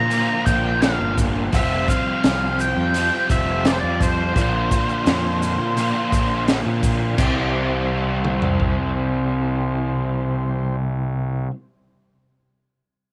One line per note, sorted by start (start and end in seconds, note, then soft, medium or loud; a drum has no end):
0.00 0.26 A#2 medium
0.00 0.11 F3 medium
0.00 7.15 F3 medium
0.00 1.51 D4 medium
0.00 0.12 F4 medium
0.00 1.51 A#4 medium
0.00 7.15 C5 medium
0.00 0.48 A#5 loud
0.10 1.50 A#2 medium
0.10 1.51 D3 medium
0.10 1.53 F3 medium
0.10 1.51 A#3 medium
0.10 1.55 F4 medium
0.10 open hi-hat medium
0.10 maracas medium
0.46 0.96 A#1 medium
0.46 0.82 G5 medium
0.46 kick medium
0.46 open hi-hat soft
0.46 maracas medium
0.82 1.15 F5 medium
0.82 snare loud
0.82 open hi-hat medium
0.82 maracas medium
0.99 1.49 G1 medium
1.18 kick medium
1.18 open hi-hat soft
1.18 maracas medium
1.52 1.86 F1 loud
1.52 2.93 F3 medium
1.52 2.93 G3 medium
1.52 4.33 C4 medium
1.52 2.95 C4 medium
1.52 2.96 F4 loud
1.52 4.33 G4 medium
1.52 1.89 E5 loud
1.52 kick medium
1.52 open hi-hat medium
1.52 maracas medium
1.88 2.61 F5 loud
1.88 kick medium
1.88 open hi-hat soft
1.88 maracas medium
2.24 2.73 C2 medium
2.24 snare loud
2.24 open hi-hat medium
2.24 maracas medium
2.59 3.27 G5 loud
2.59 open hi-hat soft
2.59 maracas medium
2.77 3.09 F2 medium
2.94 4.33 F3 medium
2.94 4.34 G3 medium
2.94 4.37 C4 medium
2.94 4.35 F4 medium
2.94 open hi-hat medium
2.94 maracas medium
3.30 3.79 F1 medium
3.30 3.67 E5 medium
3.30 kick medium
3.30 open hi-hat soft
3.30 maracas medium
3.65 3.70 D5 medium
3.65 snare loud
3.65 open hi-hat medium
3.65 maracas medium
3.73 3.79 C5 medium
3.80 4.32 F2 medium
3.80 4.00 D5 medium
4.00 6.45 C5 medium
4.00 kick medium
4.00 open hi-hat soft
4.00 maracas medium
4.35 4.68 A#1 loud
4.35 5.75 A#2 medium
4.35 5.75 D3 medium
4.35 5.75 F3 medium
4.35 5.76 A#3 medium
4.35 7.16 D4 medium
4.35 5.76 F4 medium
4.35 7.15 A#4 medium
4.35 kick loud
4.35 open hi-hat medium
4.35 maracas medium
4.71 kick medium
4.71 open hi-hat soft
4.71 maracas medium
4.89 maracas soft
5.06 5.56 F2 medium
5.06 snare loud
5.06 open hi-hat medium
5.06 maracas medium
5.42 open hi-hat soft
5.42 maracas medium
5.59 5.92 A#2 medium
5.77 7.16 A#2 medium
5.77 7.16 D3 medium
5.77 7.17 F3 medium
5.77 7.17 A#3 medium
5.77 7.17 F4 medium
5.77 open hi-hat medium
5.77 maracas medium
6.12 6.62 A#1 medium
6.12 kick medium
6.12 open hi-hat soft
6.12 maracas medium
6.48 snare loud
6.48 open hi-hat medium
6.48 maracas medium
6.66 7.15 A#2 medium
6.83 kick medium
6.83 open hi-hat medium
6.83 maracas medium
7.17 11.46 C2 medium
7.17 11.50 C3 medium
7.17 10.76 E3 medium
7.17 11.51 G3 medium
7.17 10.76 C4 medium
7.17 11.51 C4 medium
7.17 11.52 E4 medium
7.17 10.76 G4 medium
7.17 10.76 C5 medium
7.17 kick loud
7.17 crash medium
7.17 maracas medium
8.25 mid tom soft
8.42 floor tom medium
8.60 kick medium